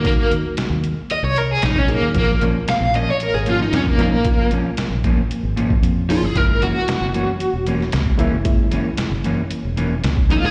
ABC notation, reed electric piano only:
X:1
M:4/4
L:1/8
Q:1/4=114
K:Bbm
V:1 name="Reed electric piano"
[G,B,EG]3 z4 [G,B,EA] | [F,B,DF]3 z4 [F,B,DE] | [F,B,DF]3 z4 [F,B,DA] | [A,B,D_F]3 z4 [A,B,DF] |
[A,B,D_F]3 z4 [A,B,DE] |]